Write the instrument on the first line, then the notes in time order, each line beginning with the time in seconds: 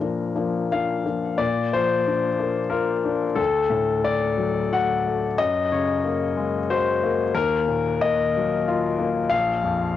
grand piano
Already playing: A#2 A#4 A#5
0.00 F3 A#3 D4
0.35 F3 A#3 D4
0.72 F3 A#3 D4 F5
1.05 F3 A#3 D4
1.38 A#2 D5
1.73 F3 C5
2.07 D4
2.39 A#3
2.70 F4 A#4
3.05 D4
3.35 D2 A4
3.70 A2
4.04 A3 D5
4.38 F#3
4.72 F#4 F#5
5.07 A3
5.38 F#2 D#5
5.72 C#3 C#5
6.05 A#3
6.37 G#3
6.70 F#4 C5
7.03 A#3
7.34 D#2 A#4
7.67 A#2
8.01 A#3 D#5
8.37 F#3
8.68 F4
8.99 A#3
9.30 A#1 F5
9.63 F2